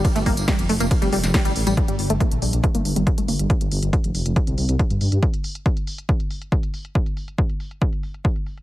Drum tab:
RD |x---x---x---x---|----------------|----------------|----------------|
HH |xxoxxxoxxxoxoxox|xxoxxxoxxxoxxxox|xxoxxxoxxxoxxxox|xxoxxxoxxxoxxxox|
TB |xx-xxx-xxx-xxx-x|----------------|----------------|----------------|
SD |----o------oo---|----------------|----------------|----------------|
BD |o-o-o---o---o---|o---o---o---o---|o---o---o---o---|o---o---o---o---|

RD |----------------|
HH |xxoxxxoxxxoxoxox|
TB |----------------|
SD |----------------|
BD |o---o---o---o---|